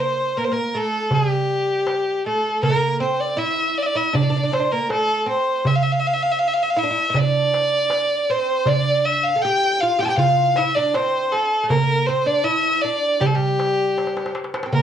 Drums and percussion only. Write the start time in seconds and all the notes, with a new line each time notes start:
0.17 darbuka ka
0.56 darbuka ka
0.74 darbuka ka
1.11 darbuka dum
1.87 darbuka tek
2.44 darbuka ka
2.63 darbuka dum
2.84 darbuka ka
3.20 darbuka ka
3.39 darbuka ka
4.15 darbuka dum
4.53 darbuka tek
4.90 darbuka tek
5.65 darbuka dum
5.84 darbuka ka
6.23 darbuka ka
6.41 darbuka ka
7.14 darbuka dum
7.54 darbuka tek
7.90 darbuka tek
8.66 darbuka dum
8.85 darbuka ka
9.23 darbuka ka
9.41 darbuka ka
10.18 darbuka dum
10.56 darbuka tek
10.94 darbuka tek
11.70 darbuka dum
11.89 darbuka ka
12.65 darbuka ka
12.84 darbuka ka
13.21 darbuka dum
13.59 darbuka tek
13.98 darbuka tek
14.07 darbuka ka
14.17 darbuka tek
14.26 darbuka ka
14.35 darbuka tek
14.44 darbuka ka
14.54 darbuka tek
14.63 darbuka ka
14.73 darbuka dum